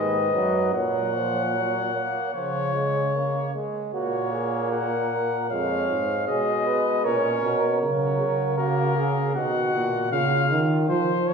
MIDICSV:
0, 0, Header, 1, 5, 480
1, 0, Start_track
1, 0, Key_signature, 6, "major"
1, 0, Tempo, 797872
1, 443, Time_signature, 4, 2, 24, 8
1, 2844, Tempo, 771208
1, 6957, End_track
2, 0, Start_track
2, 0, Title_t, "Cornet"
2, 0, Program_c, 0, 56
2, 0, Note_on_c, 0, 75, 69
2, 434, Note_off_c, 0, 75, 0
2, 445, Note_on_c, 0, 78, 71
2, 1390, Note_off_c, 0, 78, 0
2, 1412, Note_on_c, 0, 73, 64
2, 2120, Note_off_c, 0, 73, 0
2, 2371, Note_on_c, 0, 73, 63
2, 2819, Note_off_c, 0, 73, 0
2, 2842, Note_on_c, 0, 78, 61
2, 3318, Note_off_c, 0, 78, 0
2, 3328, Note_on_c, 0, 77, 68
2, 3798, Note_off_c, 0, 77, 0
2, 3808, Note_on_c, 0, 75, 64
2, 4288, Note_on_c, 0, 73, 73
2, 4298, Note_off_c, 0, 75, 0
2, 4761, Note_off_c, 0, 73, 0
2, 4765, Note_on_c, 0, 73, 57
2, 5234, Note_off_c, 0, 73, 0
2, 5244, Note_on_c, 0, 70, 70
2, 5713, Note_off_c, 0, 70, 0
2, 5723, Note_on_c, 0, 78, 69
2, 6190, Note_off_c, 0, 78, 0
2, 6201, Note_on_c, 0, 77, 82
2, 6506, Note_off_c, 0, 77, 0
2, 6677, Note_on_c, 0, 72, 70
2, 6919, Note_on_c, 0, 73, 68
2, 6928, Note_off_c, 0, 72, 0
2, 6957, Note_off_c, 0, 73, 0
2, 6957, End_track
3, 0, Start_track
3, 0, Title_t, "Flugelhorn"
3, 0, Program_c, 1, 56
3, 0, Note_on_c, 1, 71, 84
3, 431, Note_off_c, 1, 71, 0
3, 443, Note_on_c, 1, 73, 80
3, 1389, Note_off_c, 1, 73, 0
3, 1403, Note_on_c, 1, 73, 63
3, 2115, Note_off_c, 1, 73, 0
3, 2367, Note_on_c, 1, 66, 85
3, 2588, Note_off_c, 1, 66, 0
3, 2601, Note_on_c, 1, 68, 66
3, 2837, Note_on_c, 1, 70, 75
3, 2846, Note_off_c, 1, 68, 0
3, 3320, Note_off_c, 1, 70, 0
3, 3323, Note_on_c, 1, 73, 85
3, 3795, Note_off_c, 1, 73, 0
3, 3807, Note_on_c, 1, 68, 80
3, 4042, Note_off_c, 1, 68, 0
3, 4049, Note_on_c, 1, 71, 89
3, 4289, Note_on_c, 1, 70, 99
3, 4298, Note_off_c, 1, 71, 0
3, 4763, Note_off_c, 1, 70, 0
3, 4767, Note_on_c, 1, 70, 85
3, 5244, Note_on_c, 1, 66, 91
3, 5253, Note_off_c, 1, 70, 0
3, 5478, Note_off_c, 1, 66, 0
3, 5482, Note_on_c, 1, 68, 82
3, 5725, Note_on_c, 1, 66, 87
3, 5734, Note_off_c, 1, 68, 0
3, 6199, Note_off_c, 1, 66, 0
3, 6203, Note_on_c, 1, 65, 83
3, 6957, Note_off_c, 1, 65, 0
3, 6957, End_track
4, 0, Start_track
4, 0, Title_t, "Trombone"
4, 0, Program_c, 2, 57
4, 0, Note_on_c, 2, 51, 73
4, 200, Note_off_c, 2, 51, 0
4, 208, Note_on_c, 2, 54, 81
4, 441, Note_off_c, 2, 54, 0
4, 447, Note_on_c, 2, 54, 73
4, 687, Note_on_c, 2, 53, 62
4, 696, Note_off_c, 2, 54, 0
4, 924, Note_off_c, 2, 53, 0
4, 928, Note_on_c, 2, 54, 64
4, 1163, Note_off_c, 2, 54, 0
4, 1168, Note_on_c, 2, 58, 62
4, 1404, Note_off_c, 2, 58, 0
4, 1409, Note_on_c, 2, 53, 66
4, 1646, Note_off_c, 2, 53, 0
4, 1652, Note_on_c, 2, 56, 60
4, 1888, Note_off_c, 2, 56, 0
4, 1895, Note_on_c, 2, 58, 62
4, 2130, Note_off_c, 2, 58, 0
4, 2136, Note_on_c, 2, 56, 65
4, 2368, Note_off_c, 2, 56, 0
4, 2375, Note_on_c, 2, 58, 80
4, 3304, Note_off_c, 2, 58, 0
4, 3330, Note_on_c, 2, 56, 68
4, 3799, Note_off_c, 2, 56, 0
4, 3808, Note_on_c, 2, 56, 71
4, 4289, Note_on_c, 2, 61, 79
4, 4299, Note_off_c, 2, 56, 0
4, 4665, Note_off_c, 2, 61, 0
4, 4771, Note_on_c, 2, 54, 68
4, 5238, Note_off_c, 2, 54, 0
4, 5245, Note_on_c, 2, 58, 77
4, 5714, Note_off_c, 2, 58, 0
4, 5722, Note_on_c, 2, 51, 65
4, 6190, Note_off_c, 2, 51, 0
4, 6957, End_track
5, 0, Start_track
5, 0, Title_t, "Euphonium"
5, 0, Program_c, 3, 58
5, 0, Note_on_c, 3, 44, 69
5, 201, Note_off_c, 3, 44, 0
5, 204, Note_on_c, 3, 42, 69
5, 444, Note_on_c, 3, 46, 74
5, 453, Note_off_c, 3, 42, 0
5, 1235, Note_off_c, 3, 46, 0
5, 1410, Note_on_c, 3, 49, 64
5, 2110, Note_off_c, 3, 49, 0
5, 2372, Note_on_c, 3, 46, 70
5, 3303, Note_off_c, 3, 46, 0
5, 3330, Note_on_c, 3, 41, 64
5, 3564, Note_off_c, 3, 41, 0
5, 3571, Note_on_c, 3, 44, 61
5, 3804, Note_off_c, 3, 44, 0
5, 3809, Note_on_c, 3, 47, 70
5, 4290, Note_on_c, 3, 46, 63
5, 4299, Note_off_c, 3, 47, 0
5, 4523, Note_off_c, 3, 46, 0
5, 4527, Note_on_c, 3, 47, 73
5, 4762, Note_off_c, 3, 47, 0
5, 4769, Note_on_c, 3, 49, 72
5, 5002, Note_off_c, 3, 49, 0
5, 5006, Note_on_c, 3, 49, 74
5, 5709, Note_off_c, 3, 49, 0
5, 5724, Note_on_c, 3, 47, 67
5, 5958, Note_off_c, 3, 47, 0
5, 5962, Note_on_c, 3, 46, 76
5, 6196, Note_off_c, 3, 46, 0
5, 6199, Note_on_c, 3, 49, 90
5, 6434, Note_off_c, 3, 49, 0
5, 6441, Note_on_c, 3, 51, 89
5, 6676, Note_off_c, 3, 51, 0
5, 6680, Note_on_c, 3, 53, 98
5, 6957, Note_off_c, 3, 53, 0
5, 6957, End_track
0, 0, End_of_file